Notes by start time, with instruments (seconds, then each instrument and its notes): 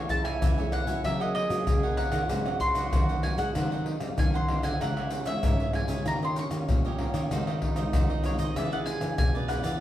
Already playing: nylon-string guitar E3, trombone E4
0.09 nylon-string guitar A3 C#4 G#4, mandolin A5, muted cavaquinho stroke, pandeiro, shaker, surdo
0.24 cavaquinho C#5 E5 G#5, mandolin G#5, pandeiro, tamborim, shaker
0.42 nylon-string guitar E3, cavaquinho A4 C#5 E5 G#5, pandeiro, tamborim, shaker, surdo
0.58 nylon-string guitar A3 C#4 G#4, cavaquinho C#5 E5 G#5, pandeiro, shaker
0.72 mandolin F#5, pandeiro, tamborim, shaker
0.87 nylon-string guitar E3 A#3 C#4 F#4, cavaquinho C#5 E5 G#5, pandeiro, shaker
1.04 nylon-string guitar F#3, cavaquinho F#4 A#4 C#5 F#5, trombone G#4, mandolin E5, pandeiro, tamborim, shaker, surdo
1.20 cavaquinho A#4 C#5 F#5, mandolin D#5, pandeiro, shaker
1.35 mandolin D#5, pandeiro
1.50 nylon-string guitar F#3 A#3 C#4 F#4, pandeiro, tamborim, shaker
1.67 nylon-string guitar C#3, pandeiro, tamborim, shaker, surdo
1.83 nylon-string guitar A#3 C#4 F#4, cavaquinho A#4 C#5 F#5, pandeiro, shaker
1.97 cavaquinho F#4 A#4 C#5 F#5, mandolin F#5, pandeiro, tamborim
2.12 nylon-string guitar D#3, cavaquinho A#4 C#5 F#5, pandeiro, tamborim, shaker
2.24 trombone F4
2.29 nylon-string guitar G#2 F#3 G#3 C4 D#4, cavaquinho F#4 G#4 C5 F#5, trombone F#4, pandeiro, tamborim, shaker, surdo
2.46 cavaquinho G#4 C5 F#5, pandeiro, tamborim, shaker
2.60 mandolin C6, muted cavaquinho stroke, pandeiro, shaker, surdo
2.75 nylon-string guitar F#3 C4 D#4, cavaquinho G#4 C5 F#5, pandeiro, tamborim, shaker
2.93 nylon-string guitar D#3, cavaquinho F#4 G#4 C5 F#5, pandeiro, tamborim, shaker, surdo
3.09 cavaquinho G#4 C5 F#5, pandeiro, shaker
3.23 nylon-string guitar F#3 C4 D#4, mandolin G#5, pandeiro, tamborim
3.37 nylon-string guitar G#3, cavaquinho G#4 C5 F#5, mandolin F#5, pandeiro, shaker
3.55 nylon-string guitar G#2 D#3 F#3 C4 D#4, trombone D#4, cavaquinho F#4 G#4 C5 F#5, pandeiro, tamborim, shaker, surdo
3.71 cavaquinho G#4 C5 F#5, pandeiro, shaker
3.86 muted cavaquinho stroke, pandeiro
4.00 nylon-string guitar F#3 G#3 C4 D#4, pandeiro, tamborim, shaker
4.18 nylon-string guitar D#3, mandolin G#5, pandeiro, tamborim, shaker, surdo
4.34 cavaquinho G#4 C5 F#5, mandolin C6, pandeiro, shaker
4.48 nylon-string guitar F#3 C4 D#4, cavaquinho F#4 G#4 C5 F#5, pandeiro, tamborim
4.63 nylon-string guitar D3, cavaquinho G#4 C5 F#5, mandolin G#5, pandeiro, tamborim, shaker
4.80 nylon-string guitar C#3 E3 G#3 D#4, trombone C#4, cavaquinho D#4 G#4 C#5 E5, mandolin F#5, pandeiro, tamborim, shaker, surdo
4.97 cavaquinho G#4 C#5 E5, pandeiro, tamborim, shaker
5.11 muted cavaquinho stroke, pandeiro, shaker
5.26 nylon-string guitar E3 G#3, cavaquinho G#4 C#5 E5, mandolin E5, pandeiro, tamborim, shaker
5.43 nylon-string guitar G#2, cavaquinho D#4 G#4 C#5 E5, pandeiro, tamborim, shaker, surdo
5.60 cavaquinho G#4 C#5 E5, pandeiro, shaker
5.73 nylon-string guitar E3 G#3 D#4, mandolin G#5, pandeiro, tamborim
5.88 nylon-string guitar C#3, cavaquinho G#4 C#5 E5, pandeiro, shaker
6.05 nylon-string guitar D#3 A#3 C#4 G4, trombone C#4, cavaquinho D#4 G4 C#5 D#5, mandolin A#5, pandeiro, tamborim, shaker, surdo
6.22 cavaquinho G4 C#5 D#5, mandolin C6, pandeiro, shaker
6.36 mandolin C#6, muted cavaquinho stroke, pandeiro, shaker
6.51 nylon-string guitar D#3 A#3 C#4 G4, pandeiro, tamborim, shaker
6.69 nylon-string guitar A#2, pandeiro, tamborim, shaker, surdo
6.85 cavaquinho G4 C#5 D#5, pandeiro, shaker
6.99 nylon-string guitar A#3 C#4 G4, cavaquinho D#4 G4 C#5 D#5, pandeiro, tamborim
7.14 nylon-string guitar D#3, cavaquinho G4 C#5 D#5, pandeiro, tamborim, shaker
7.30 nylon-string guitar D#3 G#3 C4 F#4, trombone D#4, cavaquinho F#4 G#4 C5 D#5, pandeiro, tamborim, shaker, surdo
7.47 cavaquinho G#4 C5 D#5, pandeiro, tamborim, shaker
7.61 muted cavaquinho stroke, pandeiro, surdo
7.76 nylon-string guitar G#3 C4 F#4, cavaquinho G#4 C5 D#5, pandeiro, tamborim, shaker
7.93 nylon-string guitar D#3, cavaquinho F#4 G#4 C5 D#5, pandeiro, tamborim, shaker, surdo
8.10 cavaquinho G#4 C5 D#5, pandeiro, shaker
8.24 nylon-string guitar G#3 C4 F#4, mandolin C#5, pandeiro, tamborim, shaker
8.39 nylon-string guitar D#3, cavaquinho G#4 C5 D#5, mandolin D#5, pandeiro, shaker
8.55 nylon-string guitar E3 B3 D4 G#4, cavaquinho E4 G#4 B4 D5, trombone G#4, mandolin E5, pandeiro, tamborim, shaker, surdo
8.72 cavaquinho G#4 B4 D5, mandolin F#5, pandeiro, shaker
8.86 mandolin G#5, muted cavaquinho stroke, pandeiro, shaker
9.01 nylon-string guitar E3 B3 D4 G#4, pandeiro, tamborim, shaker
9.18 nylon-string guitar B2, mandolin G#5, pandeiro, tamborim, shaker, surdo
9.35 cavaquinho G#4 B4 D5, pandeiro, shaker
9.48 nylon-string guitar B3 D4 G#4, cavaquinho E4 G#4 B4 D5, mandolin F#5, pandeiro, tamborim, shaker
9.63 nylon-string guitar E3, cavaquinho G#4 B4 D5, pandeiro, tamborim, shaker